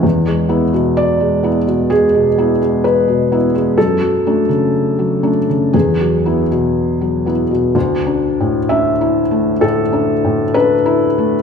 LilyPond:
<<
  \new Staff \with { instrumentName = "Felt piano" } { \time 4/4 \key d \lydian \tempo 4 = 64 r4 d''4 gis'4 b'4 | a'2 gis'4. r8 | r4 e''4 a'4 b'4 | }
  \new Staff \with { instrumentName = "Felt piano" } { \clef bass \time 4/4 \key d \lydian e,16 gis16 <b e'>16 b,8 gis16 <b e'>16 b,16 gis16 b,16 <b e'>16 gis8 b,16 <b e'>16 gis16 | fis,16 fis16 <a d'>16 cis8 fis16 <a d'>16 cis16 e,16 fis16 <b e'>16 b,8 fis16 <b e'>16 b,16 | \tuplet 3/2 { d,8 d'8 a,8 d'8 e'8 a8 a,8 d'8 a,8 d'8 e'8 a8 } | }
>>